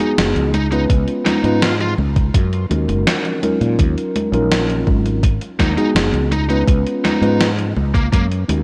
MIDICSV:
0, 0, Header, 1, 6, 480
1, 0, Start_track
1, 0, Tempo, 722892
1, 596, Time_signature, 4, 2, 24, 8
1, 5732, End_track
2, 0, Start_track
2, 0, Title_t, "Lead electric guitar"
2, 0, Program_c, 0, 29
2, 0, Note_on_c, 0, 63, 78
2, 71, Note_off_c, 0, 63, 0
2, 360, Note_on_c, 0, 63, 94
2, 435, Note_off_c, 0, 63, 0
2, 477, Note_on_c, 0, 63, 75
2, 553, Note_off_c, 0, 63, 0
2, 834, Note_on_c, 0, 63, 92
2, 1078, Note_on_c, 0, 65, 86
2, 1123, Note_off_c, 0, 63, 0
2, 1154, Note_off_c, 0, 65, 0
2, 1203, Note_on_c, 0, 65, 75
2, 1276, Note_off_c, 0, 65, 0
2, 3716, Note_on_c, 0, 63, 87
2, 3793, Note_off_c, 0, 63, 0
2, 3834, Note_on_c, 0, 63, 81
2, 3911, Note_off_c, 0, 63, 0
2, 4195, Note_on_c, 0, 63, 91
2, 4272, Note_off_c, 0, 63, 0
2, 4310, Note_on_c, 0, 63, 75
2, 4390, Note_off_c, 0, 63, 0
2, 4677, Note_on_c, 0, 63, 90
2, 4964, Note_off_c, 0, 63, 0
2, 5272, Note_on_c, 0, 58, 89
2, 5351, Note_off_c, 0, 58, 0
2, 5393, Note_on_c, 0, 58, 79
2, 5471, Note_off_c, 0, 58, 0
2, 5732, End_track
3, 0, Start_track
3, 0, Title_t, "Tine electric piano"
3, 0, Program_c, 1, 4
3, 0, Note_on_c, 1, 56, 102
3, 0, Note_on_c, 1, 59, 94
3, 0, Note_on_c, 1, 63, 96
3, 0, Note_on_c, 1, 66, 93
3, 4, Note_on_c, 1, 68, 114
3, 339, Note_off_c, 1, 56, 0
3, 340, Note_off_c, 1, 59, 0
3, 342, Note_off_c, 1, 63, 0
3, 343, Note_off_c, 1, 66, 0
3, 345, Note_off_c, 1, 68, 0
3, 475, Note_on_c, 1, 56, 100
3, 477, Note_on_c, 1, 59, 92
3, 480, Note_on_c, 1, 61, 93
3, 480, Note_on_c, 1, 65, 92
3, 486, Note_on_c, 1, 71, 103
3, 927, Note_off_c, 1, 56, 0
3, 928, Note_off_c, 1, 59, 0
3, 929, Note_off_c, 1, 61, 0
3, 929, Note_off_c, 1, 65, 0
3, 932, Note_off_c, 1, 71, 0
3, 956, Note_on_c, 1, 56, 93
3, 960, Note_on_c, 1, 59, 86
3, 961, Note_on_c, 1, 61, 83
3, 964, Note_on_c, 1, 65, 90
3, 966, Note_on_c, 1, 71, 106
3, 1128, Note_off_c, 1, 56, 0
3, 1130, Note_off_c, 1, 59, 0
3, 1130, Note_off_c, 1, 61, 0
3, 1132, Note_off_c, 1, 65, 0
3, 1133, Note_off_c, 1, 71, 0
3, 1789, Note_on_c, 1, 56, 78
3, 1791, Note_on_c, 1, 61, 70
3, 1795, Note_on_c, 1, 63, 69
3, 1796, Note_on_c, 1, 66, 69
3, 1800, Note_on_c, 1, 70, 81
3, 2243, Note_off_c, 1, 56, 0
3, 2244, Note_off_c, 1, 61, 0
3, 2247, Note_off_c, 1, 63, 0
3, 2247, Note_off_c, 1, 66, 0
3, 2249, Note_off_c, 1, 70, 0
3, 2263, Note_on_c, 1, 54, 88
3, 2268, Note_on_c, 1, 61, 84
3, 2274, Note_on_c, 1, 63, 81
3, 2278, Note_on_c, 1, 65, 83
3, 2282, Note_on_c, 1, 70, 101
3, 2841, Note_off_c, 1, 54, 0
3, 2843, Note_off_c, 1, 61, 0
3, 2846, Note_off_c, 1, 63, 0
3, 2848, Note_off_c, 1, 65, 0
3, 2850, Note_off_c, 1, 70, 0
3, 2864, Note_on_c, 1, 54, 95
3, 2868, Note_on_c, 1, 61, 85
3, 2873, Note_on_c, 1, 63, 88
3, 2877, Note_on_c, 1, 65, 87
3, 2883, Note_on_c, 1, 70, 107
3, 3455, Note_off_c, 1, 54, 0
3, 3458, Note_off_c, 1, 61, 0
3, 3460, Note_off_c, 1, 63, 0
3, 3462, Note_off_c, 1, 65, 0
3, 3465, Note_off_c, 1, 70, 0
3, 3826, Note_on_c, 1, 56, 104
3, 3830, Note_on_c, 1, 59, 93
3, 3832, Note_on_c, 1, 63, 96
3, 3834, Note_on_c, 1, 66, 90
3, 3836, Note_on_c, 1, 68, 109
3, 4177, Note_off_c, 1, 56, 0
3, 4179, Note_off_c, 1, 59, 0
3, 4179, Note_off_c, 1, 63, 0
3, 4180, Note_off_c, 1, 66, 0
3, 4182, Note_off_c, 1, 68, 0
3, 4306, Note_on_c, 1, 56, 99
3, 4311, Note_on_c, 1, 59, 91
3, 4313, Note_on_c, 1, 61, 92
3, 4315, Note_on_c, 1, 65, 90
3, 4319, Note_on_c, 1, 71, 104
3, 4762, Note_off_c, 1, 56, 0
3, 4765, Note_off_c, 1, 59, 0
3, 4766, Note_off_c, 1, 61, 0
3, 4767, Note_off_c, 1, 65, 0
3, 4769, Note_off_c, 1, 71, 0
3, 4788, Note_on_c, 1, 56, 96
3, 4791, Note_on_c, 1, 59, 86
3, 4793, Note_on_c, 1, 61, 89
3, 4794, Note_on_c, 1, 65, 87
3, 4798, Note_on_c, 1, 71, 105
3, 4964, Note_off_c, 1, 56, 0
3, 4966, Note_off_c, 1, 59, 0
3, 4966, Note_off_c, 1, 61, 0
3, 4967, Note_off_c, 1, 65, 0
3, 4969, Note_off_c, 1, 71, 0
3, 5629, Note_on_c, 1, 56, 78
3, 5630, Note_on_c, 1, 61, 72
3, 5633, Note_on_c, 1, 63, 73
3, 5635, Note_on_c, 1, 66, 70
3, 5639, Note_on_c, 1, 70, 83
3, 5732, Note_off_c, 1, 56, 0
3, 5732, Note_off_c, 1, 61, 0
3, 5732, Note_off_c, 1, 63, 0
3, 5732, Note_off_c, 1, 66, 0
3, 5732, Note_off_c, 1, 70, 0
3, 5732, End_track
4, 0, Start_track
4, 0, Title_t, "Fretless electric bass"
4, 0, Program_c, 2, 35
4, 118, Note_on_c, 2, 30, 89
4, 218, Note_off_c, 2, 30, 0
4, 236, Note_on_c, 2, 37, 88
4, 566, Note_off_c, 2, 37, 0
4, 596, Note_on_c, 2, 37, 99
4, 698, Note_off_c, 2, 37, 0
4, 954, Note_on_c, 2, 44, 102
4, 1285, Note_off_c, 2, 44, 0
4, 1314, Note_on_c, 2, 37, 94
4, 1518, Note_off_c, 2, 37, 0
4, 1557, Note_on_c, 2, 42, 98
4, 1760, Note_off_c, 2, 42, 0
4, 1796, Note_on_c, 2, 39, 80
4, 1897, Note_off_c, 2, 39, 0
4, 1914, Note_on_c, 2, 30, 104
4, 2016, Note_off_c, 2, 30, 0
4, 2395, Note_on_c, 2, 46, 93
4, 2497, Note_off_c, 2, 46, 0
4, 2514, Note_on_c, 2, 39, 99
4, 2617, Note_off_c, 2, 39, 0
4, 2870, Note_on_c, 2, 34, 99
4, 3203, Note_off_c, 2, 34, 0
4, 3233, Note_on_c, 2, 32, 95
4, 3565, Note_off_c, 2, 32, 0
4, 3714, Note_on_c, 2, 39, 84
4, 3817, Note_off_c, 2, 39, 0
4, 3948, Note_on_c, 2, 30, 93
4, 4054, Note_off_c, 2, 30, 0
4, 4067, Note_on_c, 2, 37, 89
4, 4402, Note_off_c, 2, 37, 0
4, 4431, Note_on_c, 2, 37, 97
4, 4535, Note_off_c, 2, 37, 0
4, 4790, Note_on_c, 2, 44, 102
4, 5123, Note_off_c, 2, 44, 0
4, 5154, Note_on_c, 2, 37, 99
4, 5358, Note_off_c, 2, 37, 0
4, 5394, Note_on_c, 2, 42, 102
4, 5598, Note_off_c, 2, 42, 0
4, 5634, Note_on_c, 2, 39, 83
4, 5732, Note_off_c, 2, 39, 0
4, 5732, End_track
5, 0, Start_track
5, 0, Title_t, "Muted fretless electric bass strokes"
5, 3833, Note_on_c, 9, 29, 46
5, 3899, Note_off_c, 9, 29, 0
5, 5732, End_track
6, 0, Start_track
6, 0, Title_t, "Drums"
6, 0, Note_on_c, 9, 42, 43
6, 0, Note_on_c, 9, 63, 39
6, 66, Note_off_c, 9, 42, 0
6, 66, Note_off_c, 9, 63, 0
6, 122, Note_on_c, 9, 38, 125
6, 122, Note_on_c, 9, 42, 93
6, 122, Note_on_c, 9, 63, 26
6, 188, Note_off_c, 9, 38, 0
6, 188, Note_off_c, 9, 42, 0
6, 188, Note_off_c, 9, 63, 0
6, 240, Note_on_c, 9, 42, 41
6, 306, Note_off_c, 9, 42, 0
6, 358, Note_on_c, 9, 42, 67
6, 358, Note_on_c, 9, 63, 64
6, 424, Note_off_c, 9, 42, 0
6, 424, Note_off_c, 9, 63, 0
6, 478, Note_on_c, 9, 42, 40
6, 478, Note_on_c, 9, 63, 35
6, 544, Note_off_c, 9, 42, 0
6, 544, Note_off_c, 9, 63, 0
6, 596, Note_on_c, 9, 36, 127
6, 597, Note_on_c, 9, 42, 88
6, 597, Note_on_c, 9, 63, 26
6, 662, Note_off_c, 9, 36, 0
6, 664, Note_off_c, 9, 42, 0
6, 664, Note_off_c, 9, 63, 0
6, 716, Note_on_c, 9, 42, 39
6, 782, Note_off_c, 9, 42, 0
6, 838, Note_on_c, 9, 38, 62
6, 838, Note_on_c, 9, 42, 63
6, 838, Note_on_c, 9, 63, 59
6, 904, Note_off_c, 9, 38, 0
6, 904, Note_off_c, 9, 42, 0
6, 904, Note_off_c, 9, 63, 0
6, 958, Note_on_c, 9, 42, 41
6, 958, Note_on_c, 9, 63, 36
6, 1024, Note_off_c, 9, 42, 0
6, 1024, Note_off_c, 9, 63, 0
6, 1078, Note_on_c, 9, 38, 120
6, 1078, Note_on_c, 9, 42, 91
6, 1078, Note_on_c, 9, 63, 26
6, 1144, Note_off_c, 9, 38, 0
6, 1144, Note_off_c, 9, 42, 0
6, 1144, Note_off_c, 9, 63, 0
6, 1199, Note_on_c, 9, 42, 38
6, 1265, Note_off_c, 9, 42, 0
6, 1318, Note_on_c, 9, 63, 64
6, 1384, Note_off_c, 9, 63, 0
6, 1436, Note_on_c, 9, 36, 111
6, 1437, Note_on_c, 9, 42, 39
6, 1437, Note_on_c, 9, 63, 35
6, 1502, Note_off_c, 9, 36, 0
6, 1503, Note_off_c, 9, 42, 0
6, 1503, Note_off_c, 9, 63, 0
6, 1556, Note_on_c, 9, 36, 123
6, 1557, Note_on_c, 9, 42, 96
6, 1557, Note_on_c, 9, 63, 27
6, 1623, Note_off_c, 9, 36, 0
6, 1624, Note_off_c, 9, 42, 0
6, 1624, Note_off_c, 9, 63, 0
6, 1679, Note_on_c, 9, 42, 37
6, 1746, Note_off_c, 9, 42, 0
6, 1799, Note_on_c, 9, 42, 64
6, 1799, Note_on_c, 9, 63, 60
6, 1865, Note_off_c, 9, 42, 0
6, 1865, Note_off_c, 9, 63, 0
6, 1919, Note_on_c, 9, 42, 42
6, 1919, Note_on_c, 9, 63, 36
6, 1986, Note_off_c, 9, 42, 0
6, 1986, Note_off_c, 9, 63, 0
6, 2039, Note_on_c, 9, 38, 123
6, 2039, Note_on_c, 9, 42, 89
6, 2039, Note_on_c, 9, 63, 27
6, 2106, Note_off_c, 9, 38, 0
6, 2106, Note_off_c, 9, 42, 0
6, 2106, Note_off_c, 9, 63, 0
6, 2158, Note_on_c, 9, 42, 39
6, 2225, Note_off_c, 9, 42, 0
6, 2278, Note_on_c, 9, 42, 67
6, 2278, Note_on_c, 9, 63, 60
6, 2345, Note_off_c, 9, 42, 0
6, 2345, Note_off_c, 9, 63, 0
6, 2399, Note_on_c, 9, 42, 39
6, 2399, Note_on_c, 9, 63, 35
6, 2465, Note_off_c, 9, 42, 0
6, 2465, Note_off_c, 9, 63, 0
6, 2515, Note_on_c, 9, 36, 120
6, 2519, Note_on_c, 9, 42, 84
6, 2519, Note_on_c, 9, 63, 27
6, 2582, Note_off_c, 9, 36, 0
6, 2585, Note_off_c, 9, 42, 0
6, 2585, Note_off_c, 9, 63, 0
6, 2640, Note_on_c, 9, 42, 38
6, 2707, Note_off_c, 9, 42, 0
6, 2760, Note_on_c, 9, 42, 64
6, 2760, Note_on_c, 9, 63, 61
6, 2826, Note_off_c, 9, 42, 0
6, 2826, Note_off_c, 9, 63, 0
6, 2879, Note_on_c, 9, 42, 39
6, 2879, Note_on_c, 9, 63, 37
6, 2945, Note_off_c, 9, 42, 0
6, 2945, Note_off_c, 9, 63, 0
6, 2999, Note_on_c, 9, 38, 113
6, 2999, Note_on_c, 9, 42, 86
6, 2999, Note_on_c, 9, 63, 26
6, 3065, Note_off_c, 9, 38, 0
6, 3065, Note_off_c, 9, 42, 0
6, 3065, Note_off_c, 9, 63, 0
6, 3119, Note_on_c, 9, 42, 38
6, 3186, Note_off_c, 9, 42, 0
6, 3234, Note_on_c, 9, 36, 109
6, 3239, Note_on_c, 9, 63, 66
6, 3301, Note_off_c, 9, 36, 0
6, 3305, Note_off_c, 9, 63, 0
6, 3358, Note_on_c, 9, 42, 39
6, 3358, Note_on_c, 9, 63, 36
6, 3424, Note_off_c, 9, 42, 0
6, 3424, Note_off_c, 9, 63, 0
6, 3474, Note_on_c, 9, 36, 120
6, 3477, Note_on_c, 9, 42, 90
6, 3477, Note_on_c, 9, 63, 27
6, 3541, Note_off_c, 9, 36, 0
6, 3543, Note_off_c, 9, 42, 0
6, 3543, Note_off_c, 9, 63, 0
6, 3595, Note_on_c, 9, 42, 39
6, 3661, Note_off_c, 9, 42, 0
6, 3713, Note_on_c, 9, 36, 64
6, 3716, Note_on_c, 9, 38, 59
6, 3716, Note_on_c, 9, 42, 62
6, 3716, Note_on_c, 9, 63, 60
6, 3780, Note_off_c, 9, 36, 0
6, 3782, Note_off_c, 9, 38, 0
6, 3782, Note_off_c, 9, 42, 0
6, 3782, Note_off_c, 9, 63, 0
6, 3835, Note_on_c, 9, 42, 39
6, 3835, Note_on_c, 9, 63, 36
6, 3902, Note_off_c, 9, 42, 0
6, 3902, Note_off_c, 9, 63, 0
6, 3956, Note_on_c, 9, 38, 117
6, 3956, Note_on_c, 9, 42, 91
6, 4023, Note_off_c, 9, 38, 0
6, 4023, Note_off_c, 9, 42, 0
6, 4075, Note_on_c, 9, 42, 38
6, 4141, Note_off_c, 9, 42, 0
6, 4195, Note_on_c, 9, 42, 65
6, 4195, Note_on_c, 9, 63, 64
6, 4261, Note_off_c, 9, 42, 0
6, 4261, Note_off_c, 9, 63, 0
6, 4315, Note_on_c, 9, 42, 36
6, 4315, Note_on_c, 9, 63, 33
6, 4382, Note_off_c, 9, 42, 0
6, 4382, Note_off_c, 9, 63, 0
6, 4433, Note_on_c, 9, 36, 121
6, 4437, Note_on_c, 9, 42, 85
6, 4437, Note_on_c, 9, 63, 27
6, 4499, Note_off_c, 9, 36, 0
6, 4503, Note_off_c, 9, 42, 0
6, 4503, Note_off_c, 9, 63, 0
6, 4559, Note_on_c, 9, 42, 38
6, 4625, Note_off_c, 9, 42, 0
6, 4679, Note_on_c, 9, 38, 59
6, 4679, Note_on_c, 9, 42, 62
6, 4679, Note_on_c, 9, 63, 62
6, 4746, Note_off_c, 9, 38, 0
6, 4746, Note_off_c, 9, 42, 0
6, 4746, Note_off_c, 9, 63, 0
6, 4798, Note_on_c, 9, 42, 38
6, 4798, Note_on_c, 9, 63, 39
6, 4864, Note_off_c, 9, 42, 0
6, 4864, Note_off_c, 9, 63, 0
6, 4917, Note_on_c, 9, 38, 112
6, 4917, Note_on_c, 9, 42, 89
6, 4917, Note_on_c, 9, 63, 27
6, 4983, Note_off_c, 9, 38, 0
6, 4983, Note_off_c, 9, 42, 0
6, 4983, Note_off_c, 9, 63, 0
6, 5037, Note_on_c, 9, 42, 37
6, 5103, Note_off_c, 9, 42, 0
6, 5155, Note_on_c, 9, 63, 66
6, 5221, Note_off_c, 9, 63, 0
6, 5274, Note_on_c, 9, 36, 103
6, 5278, Note_on_c, 9, 42, 39
6, 5278, Note_on_c, 9, 63, 37
6, 5340, Note_off_c, 9, 36, 0
6, 5344, Note_off_c, 9, 42, 0
6, 5344, Note_off_c, 9, 63, 0
6, 5394, Note_on_c, 9, 36, 112
6, 5399, Note_on_c, 9, 42, 90
6, 5399, Note_on_c, 9, 63, 28
6, 5461, Note_off_c, 9, 36, 0
6, 5466, Note_off_c, 9, 42, 0
6, 5466, Note_off_c, 9, 63, 0
6, 5519, Note_on_c, 9, 42, 38
6, 5586, Note_off_c, 9, 42, 0
6, 5637, Note_on_c, 9, 42, 64
6, 5637, Note_on_c, 9, 63, 65
6, 5703, Note_off_c, 9, 42, 0
6, 5703, Note_off_c, 9, 63, 0
6, 5732, End_track
0, 0, End_of_file